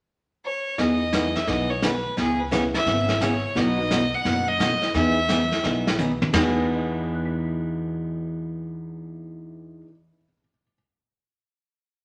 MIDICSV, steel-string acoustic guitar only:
0, 0, Header, 1, 2, 480
1, 0, Start_track
1, 0, Key_signature, 4, "major"
1, 0, Tempo, 346220
1, 1097, Time_signature, 4, 2, 24, 8
1, 16702, End_track
2, 0, Start_track
2, 0, Title_t, "Steel-string acoustic guitar"
2, 0, Program_c, 0, 25
2, 1093, Note_on_c, 0, 52, 58
2, 1095, Note_on_c, 0, 59, 59
2, 1101, Note_on_c, 0, 63, 63
2, 1112, Note_on_c, 0, 68, 64
2, 1398, Note_off_c, 0, 52, 0
2, 1399, Note_off_c, 0, 59, 0
2, 1403, Note_off_c, 0, 63, 0
2, 1408, Note_off_c, 0, 68, 0
2, 1567, Note_on_c, 0, 52, 70
2, 1576, Note_on_c, 0, 63, 65
2, 1577, Note_on_c, 0, 59, 72
2, 1581, Note_on_c, 0, 68, 74
2, 1733, Note_off_c, 0, 52, 0
2, 1737, Note_off_c, 0, 59, 0
2, 1737, Note_off_c, 0, 63, 0
2, 1740, Note_off_c, 0, 68, 0
2, 2050, Note_on_c, 0, 52, 50
2, 2056, Note_on_c, 0, 59, 53
2, 2060, Note_on_c, 0, 63, 59
2, 2064, Note_on_c, 0, 68, 59
2, 2357, Note_off_c, 0, 52, 0
2, 2360, Note_off_c, 0, 59, 0
2, 2362, Note_off_c, 0, 63, 0
2, 2364, Note_off_c, 0, 68, 0
2, 2528, Note_on_c, 0, 52, 71
2, 2537, Note_on_c, 0, 59, 73
2, 2542, Note_on_c, 0, 68, 68
2, 2543, Note_on_c, 0, 63, 76
2, 2693, Note_off_c, 0, 52, 0
2, 2697, Note_off_c, 0, 59, 0
2, 2700, Note_off_c, 0, 63, 0
2, 2700, Note_off_c, 0, 68, 0
2, 3003, Note_on_c, 0, 49, 59
2, 3004, Note_on_c, 0, 52, 61
2, 3009, Note_on_c, 0, 59, 67
2, 3011, Note_on_c, 0, 61, 65
2, 3018, Note_on_c, 0, 68, 58
2, 3313, Note_off_c, 0, 49, 0
2, 3314, Note_off_c, 0, 52, 0
2, 3316, Note_off_c, 0, 59, 0
2, 3317, Note_off_c, 0, 61, 0
2, 3321, Note_off_c, 0, 68, 0
2, 3483, Note_on_c, 0, 49, 70
2, 3485, Note_on_c, 0, 52, 74
2, 3491, Note_on_c, 0, 59, 73
2, 3496, Note_on_c, 0, 61, 76
2, 3498, Note_on_c, 0, 68, 77
2, 3650, Note_off_c, 0, 49, 0
2, 3651, Note_off_c, 0, 52, 0
2, 3654, Note_off_c, 0, 59, 0
2, 3657, Note_off_c, 0, 61, 0
2, 3658, Note_off_c, 0, 68, 0
2, 3965, Note_on_c, 0, 49, 53
2, 3965, Note_on_c, 0, 52, 50
2, 3971, Note_on_c, 0, 59, 54
2, 3971, Note_on_c, 0, 61, 59
2, 3974, Note_on_c, 0, 68, 50
2, 4275, Note_off_c, 0, 49, 0
2, 4275, Note_off_c, 0, 52, 0
2, 4277, Note_off_c, 0, 59, 0
2, 4278, Note_off_c, 0, 61, 0
2, 4279, Note_off_c, 0, 68, 0
2, 4441, Note_on_c, 0, 49, 69
2, 4448, Note_on_c, 0, 52, 75
2, 4452, Note_on_c, 0, 61, 71
2, 4455, Note_on_c, 0, 59, 69
2, 4461, Note_on_c, 0, 68, 86
2, 4610, Note_off_c, 0, 49, 0
2, 4613, Note_off_c, 0, 52, 0
2, 4615, Note_off_c, 0, 61, 0
2, 4617, Note_off_c, 0, 59, 0
2, 4620, Note_off_c, 0, 68, 0
2, 4925, Note_on_c, 0, 47, 60
2, 4936, Note_on_c, 0, 54, 62
2, 4936, Note_on_c, 0, 59, 55
2, 4940, Note_on_c, 0, 66, 64
2, 4944, Note_on_c, 0, 63, 62
2, 5236, Note_off_c, 0, 47, 0
2, 5241, Note_off_c, 0, 54, 0
2, 5241, Note_off_c, 0, 59, 0
2, 5243, Note_off_c, 0, 66, 0
2, 5245, Note_off_c, 0, 63, 0
2, 5420, Note_on_c, 0, 47, 66
2, 5420, Note_on_c, 0, 54, 79
2, 5424, Note_on_c, 0, 59, 73
2, 5433, Note_on_c, 0, 63, 76
2, 5433, Note_on_c, 0, 66, 80
2, 5580, Note_off_c, 0, 47, 0
2, 5580, Note_off_c, 0, 54, 0
2, 5582, Note_off_c, 0, 59, 0
2, 5587, Note_off_c, 0, 63, 0
2, 5587, Note_off_c, 0, 66, 0
2, 5887, Note_on_c, 0, 59, 56
2, 5888, Note_on_c, 0, 47, 54
2, 5888, Note_on_c, 0, 54, 53
2, 5896, Note_on_c, 0, 63, 55
2, 5898, Note_on_c, 0, 66, 61
2, 6197, Note_off_c, 0, 59, 0
2, 6198, Note_off_c, 0, 47, 0
2, 6198, Note_off_c, 0, 54, 0
2, 6202, Note_off_c, 0, 63, 0
2, 6203, Note_off_c, 0, 66, 0
2, 6365, Note_on_c, 0, 47, 71
2, 6372, Note_on_c, 0, 54, 69
2, 6375, Note_on_c, 0, 59, 70
2, 6379, Note_on_c, 0, 63, 80
2, 6387, Note_on_c, 0, 66, 77
2, 6534, Note_off_c, 0, 47, 0
2, 6537, Note_off_c, 0, 54, 0
2, 6539, Note_off_c, 0, 59, 0
2, 6541, Note_off_c, 0, 63, 0
2, 6545, Note_off_c, 0, 66, 0
2, 6851, Note_on_c, 0, 52, 63
2, 6859, Note_on_c, 0, 59, 55
2, 6861, Note_on_c, 0, 68, 65
2, 6864, Note_on_c, 0, 63, 63
2, 7160, Note_off_c, 0, 52, 0
2, 7164, Note_off_c, 0, 59, 0
2, 7165, Note_off_c, 0, 68, 0
2, 7167, Note_off_c, 0, 63, 0
2, 7327, Note_on_c, 0, 59, 73
2, 7331, Note_on_c, 0, 52, 71
2, 7333, Note_on_c, 0, 63, 77
2, 7339, Note_on_c, 0, 68, 73
2, 7496, Note_off_c, 0, 59, 0
2, 7498, Note_off_c, 0, 52, 0
2, 7498, Note_off_c, 0, 63, 0
2, 7502, Note_off_c, 0, 68, 0
2, 7813, Note_on_c, 0, 52, 54
2, 7824, Note_on_c, 0, 59, 51
2, 7827, Note_on_c, 0, 68, 51
2, 7831, Note_on_c, 0, 63, 62
2, 8122, Note_off_c, 0, 52, 0
2, 8127, Note_off_c, 0, 59, 0
2, 8129, Note_off_c, 0, 68, 0
2, 8131, Note_off_c, 0, 63, 0
2, 8305, Note_on_c, 0, 52, 64
2, 8308, Note_on_c, 0, 59, 77
2, 8312, Note_on_c, 0, 63, 81
2, 8319, Note_on_c, 0, 68, 74
2, 8465, Note_off_c, 0, 52, 0
2, 8467, Note_off_c, 0, 59, 0
2, 8469, Note_off_c, 0, 63, 0
2, 8472, Note_off_c, 0, 68, 0
2, 8773, Note_on_c, 0, 52, 68
2, 8791, Note_on_c, 0, 59, 73
2, 8805, Note_on_c, 0, 63, 76
2, 8815, Note_on_c, 0, 68, 79
2, 13642, Note_off_c, 0, 52, 0
2, 13660, Note_off_c, 0, 59, 0
2, 13673, Note_off_c, 0, 63, 0
2, 13683, Note_off_c, 0, 68, 0
2, 16702, End_track
0, 0, End_of_file